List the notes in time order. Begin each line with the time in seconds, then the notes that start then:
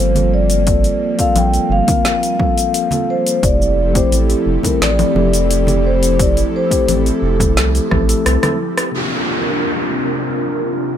Already playing: G1 F3 G3 A#3 C4 F4 A4 C5
0.14 A#3 C4 F4 A4, open hi-hat, low conga, shaker
0.34 D5
0.50 open hi-hat, shaker
0.66 A#3 C4 F4 A4, kick, open hi-hat, shaker
0.84 open hi-hat, shaker
1.18 A#3 C4 F4 A4 F5, kick, open hi-hat, shaker
1.35 A#1 G5, open hi-hat, low conga, shaker
1.54 open hi-hat, shaker
1.70 G1 F5
1.87 A#3 C4 F4 A#4, kick, open hi-hat, high conga, low conga, shaker
2.05 snare, open hi-hat, shaker
2.23 open hi-hat, shaker
2.39 A#3 C4 F4 A4, kick, low conga
2.58 open hi-hat, shaker
2.74 open hi-hat, shaker
2.91 A#3 C4 F4 A4, open hi-hat, low conga, shaker
3.10 C5
3.27 open hi-hat, shaker
3.42 F1 F3 A3 C4 E4 G4 A4 D5, kick, open hi-hat, shaker
3.62 shaker
3.94 A3 C4 E4 G4 C5, kick, open hi-hat, shaker
4.12 A1 A4, open hi-hat, shaker
4.30 open hi-hat, shaker
4.46 F1
4.62 A3 C4 E4 A4 A#4, kick, open hi-hat, high conga, low conga, shaker
4.81 A1 D5, snare, open hi-hat, shaker
4.99 open hi-hat, low conga, shaker
5.14 F1 A3 C4 E4 G4, low conga
5.33 open hi-hat, shaker
5.51 open hi-hat, shaker
5.66 A3 C4 E4 G4, open hi-hat, low conga, shaker
5.86 C5
6.03 open hi-hat, shaker
6.18 A3 C4 E4 G4 D5, kick, open hi-hat, shaker
6.37 open hi-hat, shaker
6.56 C5
6.70 A3 C4 E4 G4, kick, open hi-hat, shaker
6.88 A1 A4, open hi-hat, low conga, shaker
7.06 open hi-hat, shaker
7.22 F1 A4
7.39 A3 C4 E4 A4, kick, open hi-hat, high conga, low conga, shaker
7.57 C2, snare, open hi-hat, shaker
7.75 open hi-hat, shaker
7.90 A1 A3 C4 E4 A4, kick, cross-stick, low conga
8.07 A3 C4 E4 A4, open hi-hat, shaker
8.26 C2, cross-stick, open hi-hat, shaker
8.42 A3 C4 E4 A4, cross-stick, open hi-hat, high conga, low conga, shaker
8.78 cross-stick, open hi-hat, shaker
8.92 C3 A#3 C4 D4 F4 A#4, downlifter
8.97 G4